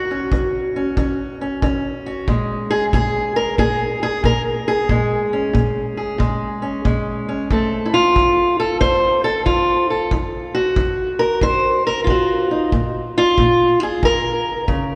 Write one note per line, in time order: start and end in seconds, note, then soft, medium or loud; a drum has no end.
0.00 0.28 D#3 medium
0.00 2.05 F#4 medium
0.11 0.76 C#4 soft
0.32 0.93 D#3 medium
0.32 kick medium
0.76 0.98 C#4 soft
0.97 1.58 D#3 medium
0.97 1.41 C#4 soft
0.97 kick medium
1.41 1.63 C#4 soft
1.62 2.24 D#3 medium
1.62 5.13 C#4 soft
1.62 kick medium
2.06 2.26 F#4 soft
2.28 2.89 A#2 medium
2.28 4.89 G#3 soft
2.28 kick medium
2.71 2.84 G#4 medium
2.93 3.55 A#2 medium
2.93 3.36 G#4 medium
2.93 kick medium
3.36 3.59 A#4 medium
3.58 4.20 A#2 medium
3.58 4.02 G#4 loud
3.58 kick medium
4.03 4.25 G#4 medium
4.24 4.85 A#2 medium
4.24 4.41 A#4 medium
4.24 kick medium
4.68 5.96 G#4 medium
4.89 5.50 A#2 medium
4.89 6.18 G#3 soft
4.89 kick medium
5.33 6.61 C#4 soft
5.53 6.15 A#2 medium
5.53 kick medium
5.97 7.48 G#4 soft
6.18 6.80 A#2 medium
6.18 6.84 G#3 soft
6.18 kick medium
6.62 7.27 C#4 soft
6.85 7.46 A#2 medium
6.85 7.51 G#3 soft
6.85 kick medium
7.28 7.48 C#4 soft
7.51 8.11 F2 medium
7.51 10.09 A3 soft
7.51 10.10 C4 soft
7.51 7.93 A4 soft
7.51 kick medium
7.86 7.94 E4 medium
7.94 8.59 F4 medium
8.16 8.77 F2 medium
8.16 kick medium
8.60 8.80 A4 medium
8.81 9.42 F2 medium
8.81 9.24 C5 loud
8.81 kick medium
9.24 9.45 A4 medium
9.46 10.07 F2 medium
9.46 9.89 F4 medium
9.46 kick medium
9.90 10.10 A4 soft
10.11 10.73 D#3 medium
10.11 kick medium
10.55 11.85 F#4 medium
10.76 11.38 D#3 medium
10.76 kick medium
11.19 11.42 A#4 medium
11.41 12.03 D#3 medium
11.41 11.85 C5 loud
11.41 kick medium
11.87 12.03 A#4 medium
12.04 12.68 D#3 medium
12.04 12.73 F4 medium
12.04 kick medium
12.10 12.51 F#4 medium
12.51 12.70 D#4 soft
12.72 13.34 A#2 medium
12.72 kick medium
13.18 13.82 F4 loud
13.38 13.99 A#2 medium
13.38 kick medium
13.83 14.04 G#4 medium
14.03 14.64 D#3 medium
14.03 14.95 A#4 loud
14.03 kick medium
14.68 14.95 C#3 medium
14.68 kick medium